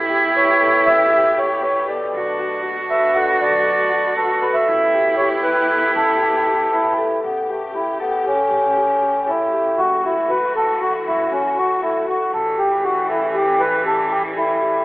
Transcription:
0.00 0.84 A1 medium
0.00 7.20 B2 medium
0.00 2.12 B3 medium
0.00 1.84 E4 loud
0.00 2.12 G4 medium
0.00 0.60 A4 medium
0.00 0.35 B4 medium
0.10 1.11 G4 medium
0.35 1.62 B4 medium
0.35 0.88 C#5 medium
0.61 1.88 A4 medium
0.86 2.12 A1 medium
0.86 1.39 E5 loud
1.12 1.36 G4 medium
1.37 2.45 G4 medium
1.37 1.62 C#5 medium
1.63 2.90 B4 medium
1.63 1.87 C#5 medium
1.88 3.15 A4 medium
1.88 2.61 D5 medium
2.14 3.39 B1 medium
2.14 4.66 A3 medium
2.14 4.66 D4 medium
2.14 4.70 F#4 loud
2.39 2.64 F#4 medium
2.65 3.66 F#4 medium
2.90 4.17 B4 medium
2.90 3.17 E5 medium
3.15 4.43 A4 medium
3.15 3.39 F#5 medium
3.41 4.66 B1 medium
3.41 4.14 D5 loud
3.66 3.92 F#4 medium
3.92 5.00 F#4 medium
4.17 4.44 A4 medium
4.17 5.44 B4 medium
4.41 5.70 A4 medium
4.41 4.55 B4 medium
4.54 5.15 E5 medium
4.68 5.93 A1 medium
4.68 7.21 B3 medium
4.68 6.98 E4 loud
4.68 7.21 G4 medium
4.94 5.19 G4 medium
5.17 6.21 G4 medium
5.17 5.29 C#5 medium
5.43 5.91 B4 medium
5.43 6.71 B4 medium
5.70 6.97 A4 medium
5.95 7.21 A1 medium
5.95 6.94 A4 medium
6.22 6.46 G4 medium
6.47 7.49 G4 medium
6.72 7.20 E4 medium
6.72 8.77 B4 medium
6.98 7.99 A4 medium
7.23 8.48 A1 medium
7.23 9.76 C#3 medium
7.23 14.83 A3 medium
7.23 7.50 B3 medium
7.23 9.76 G4 medium
7.49 7.75 A3 medium
7.49 7.74 G4 medium
7.74 7.98 E4 medium
7.74 8.25 G4 medium
8.00 8.26 B3 medium
8.00 9.27 A4 medium
8.26 9.31 C#4 medium
8.26 8.76 G4 medium
8.51 9.76 A1 medium
8.77 9.01 G4 medium
9.01 9.53 G4 medium
9.27 9.80 E4 medium
9.27 10.55 A4 medium
9.53 10.10 G4 medium
9.78 11.03 F#1 medium
9.78 12.31 E3 medium
9.78 12.30 F#4 medium
9.78 10.05 F#4 medium
10.04 10.31 E4 medium
10.04 10.29 F#4 medium
10.30 10.80 F#4 medium
10.30 10.53 B4 medium
10.55 11.82 A4 medium
10.55 10.82 A4 loud
10.81 11.31 F#4 medium
10.81 10.93 F#4 medium
11.06 12.30 F#1 medium
11.06 11.33 E4 medium
11.32 11.58 C#4 medium
11.32 11.57 F#4 medium
11.57 12.07 F#4 medium
11.57 11.81 F#4 medium
11.83 12.06 E4 medium
11.83 13.09 A4 medium
12.08 12.65 F#4 medium
12.08 12.32 F#4 medium
12.33 13.58 A1 medium
12.33 14.85 C#3 medium
12.33 14.85 E3 medium
12.33 14.85 G3 medium
12.33 12.59 A4 loud
12.59 12.85 G4 medium
12.59 12.84 G4 medium
12.84 13.07 F#4 medium
12.84 13.34 G4 medium
13.09 13.36 E4 medium
13.09 14.36 A4 medium
13.35 13.85 G4 medium
13.35 13.61 G4 medium
13.59 14.85 A1 medium
13.59 13.83 B4 loud
13.85 14.10 G4 medium
13.85 14.12 A4 medium
14.11 14.61 G4 medium
14.11 14.23 G4 medium
14.36 14.84 E4 medium
14.36 14.85 A4 medium
14.62 14.85 G4 medium

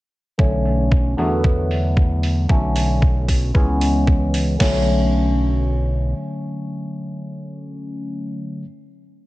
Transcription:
0.38 1.15 B1 medium
0.38 1.12 D3 medium
0.38 1.13 F#3 medium
0.38 1.13 A3 medium
0.38 1.13 C#4 medium
0.38 kick loud
0.65 open hi-hat medium
0.92 kick loud
1.17 2.47 E2 medium
1.17 2.44 D3 medium
1.17 2.44 F#3 medium
1.17 2.45 A3 medium
1.17 2.45 B3 medium
1.17 open hi-hat medium
1.44 kick loud
1.71 open hi-hat medium
1.97 kick loud
2.23 open hi-hat medium
2.49 3.52 B1 medium
2.49 3.49 D3 medium
2.49 3.50 F#3 medium
2.49 3.50 A3 medium
2.49 3.50 C#4 medium
2.49 kick loud
2.76 open hi-hat loud
3.02 kick loud
3.28 kick medium
3.28 open hi-hat medium
3.54 4.57 C#2 medium
3.54 4.54 E3 medium
3.54 4.55 G#3 medium
3.54 4.55 B3 medium
3.54 4.55 C#4 medium
3.54 kick loud
3.81 open hi-hat loud
4.07 kick loud
4.34 open hi-hat loud
4.59 6.14 B1 medium
4.59 8.62 D3 medium
4.59 8.63 F#3 medium
4.59 8.64 A3 medium
4.59 8.64 C#4 medium
4.59 kick medium
4.59 snare medium
4.59 crash medium

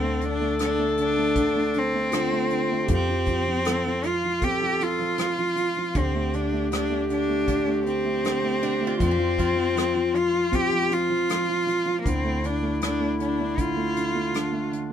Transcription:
0.00 2.84 D2 medium
0.00 0.20 D3 medium
0.00 0.39 A3 soft
0.00 0.26 C4 medium
0.00 2.13 A4 loud
0.21 0.59 D3 medium
0.21 0.61 D4 medium
0.21 closed hi-hat soft
0.40 0.77 A3 soft
0.59 0.97 D3 medium
0.59 cross-stick medium
0.59 closed hi-hat medium
0.63 0.97 D4 medium
0.79 1.16 A3 soft
0.97 1.35 D3 soft
0.97 1.80 D4 medium
0.97 closed hi-hat soft
1.17 1.54 A3 soft
1.35 1.74 D3 medium
1.35 kick medium
1.35 closed hi-hat medium
1.55 1.92 A3 soft
1.74 2.11 D3 medium
1.74 closed hi-hat soft
1.78 2.91 C4 medium
1.94 2.30 A3 soft
2.12 2.49 D3 medium
2.12 2.88 F4 medium
2.12 3.05 A4 soft
2.12 cross-stick medium
2.12 closed hi-hat medium
2.32 2.69 A3 soft
2.50 2.88 D3 soft
2.50 closed hi-hat soft
2.71 2.89 A3 soft
2.86 5.90 F2 medium
2.86 3.08 F3 medium
2.86 3.64 G4 medium
2.86 kick medium
2.86 closed hi-hat medium
2.94 4.07 C4 medium
3.09 3.27 F3 soft
3.26 3.46 F3 soft
3.26 kick medium
3.26 closed hi-hat soft
3.48 3.65 F3 soft
3.65 3.84 F3 soft
3.65 4.11 A4 medium
3.65 cross-stick medium
3.65 closed hi-hat medium
3.86 4.04 F3 soft
4.03 4.23 F3 soft
4.03 4.45 F4 medium
4.03 closed hi-hat soft
4.24 4.60 F3 soft
4.41 5.92 C4 medium
4.41 4.84 G4 medium
4.41 5.52 A4 medium
4.41 kick medium
4.41 closed hi-hat medium
4.61 4.79 F3 soft
4.81 4.98 F3 soft
4.81 5.99 F4 medium
4.81 closed hi-hat soft
4.99 5.17 F3 soft
5.18 5.37 F3 soft
5.18 cross-stick medium
5.18 closed hi-hat medium
5.39 5.55 F3 soft
5.56 5.75 F3 soft
5.56 closed hi-hat soft
5.77 5.95 F3 soft
5.95 8.97 D2 medium
5.95 6.33 D3 medium
5.95 6.36 C4 medium
5.95 9.00 G4 medium
5.95 kick medium
5.95 closed hi-hat medium
6.14 6.51 A3 soft
6.33 6.70 D3 soft
6.33 6.72 D4 medium
6.33 closed hi-hat soft
6.52 6.89 A3 soft
6.71 7.08 D3 medium
6.71 7.08 D4 medium
6.71 cross-stick medium
6.71 closed hi-hat medium
6.90 7.27 A3 soft
7.09 7.45 D3 soft
7.09 7.83 D4 medium
7.09 closed hi-hat soft
7.29 7.66 A3 soft
7.47 7.84 D3 medium
7.47 kick medium
7.47 closed hi-hat medium
7.67 8.03 A3 soft
7.86 8.22 D3 soft
7.86 8.97 C4 medium
7.86 closed hi-hat soft
8.05 8.42 A3 soft
8.23 8.60 D3 medium
8.23 cross-stick medium
8.23 closed hi-hat medium
8.43 8.79 A3 soft
8.61 8.99 D3 soft
8.61 9.35 D4 medium
8.61 closed hi-hat soft
8.81 8.99 A3 soft
8.87 9.38 F4 soft
8.98 12.02 F2 medium
8.98 9.17 F3 medium
8.98 10.18 C4 medium
8.98 11.78 F4 medium
8.98 kick medium
8.98 closed hi-hat medium
9.11 9.78 G4 soft
9.19 9.36 F3 soft
9.38 9.55 F3 medium
9.38 10.31 F4 soft
9.38 kick medium
9.38 closed hi-hat soft
9.56 9.74 F3 soft
9.75 9.93 F3 medium
9.75 cross-stick medium
9.75 closed hi-hat medium
9.95 10.12 F3 soft
10.14 10.32 F3 soft
10.14 10.56 F4 medium
10.14 closed hi-hat soft
10.33 10.71 F3 soft
10.52 12.01 C4 medium
10.52 10.94 G4 medium
10.52 kick medium
10.52 closed hi-hat medium
10.72 10.89 F3 soft
10.91 11.09 F3 soft
10.91 11.99 F4 medium
10.91 closed hi-hat soft
11.10 11.28 F3 soft
11.29 11.48 F3 medium
11.29 cross-stick medium
11.29 closed hi-hat medium
11.49 11.65 F3 soft
11.67 11.85 F3 soft
11.67 closed hi-hat soft
11.86 12.05 F3 soft
12.01 12.09 A#3 medium
12.01 14.38 E4 medium
12.05 14.93 D2 medium
12.05 12.43 D3 medium
12.05 12.47 C4 medium
12.05 kick medium
12.05 closed hi-hat medium
12.24 12.61 A3 soft
12.44 12.80 D3 soft
12.44 12.83 D4 medium
12.44 closed hi-hat soft
12.63 12.99 A3 soft
12.81 13.18 D3 medium
12.81 13.18 D4 medium
12.81 cross-stick medium
12.81 closed hi-hat medium
13.00 13.38 A3 soft
13.19 13.56 D3 medium
13.19 13.60 D4 medium
13.19 closed hi-hat soft
13.39 13.75 A3 soft
13.58 13.94 D3 medium
13.58 14.73 F4 medium
13.58 kick medium
13.58 closed hi-hat medium
13.77 14.13 A3 soft
13.96 14.32 D3 soft
13.96 closed hi-hat soft
14.14 14.51 A3 soft
14.33 14.70 D3 medium
14.33 14.93 D4 medium
14.33 cross-stick medium
14.33 closed hi-hat medium
14.52 14.89 A3 soft
14.72 14.93 D3 soft
14.72 closed hi-hat soft

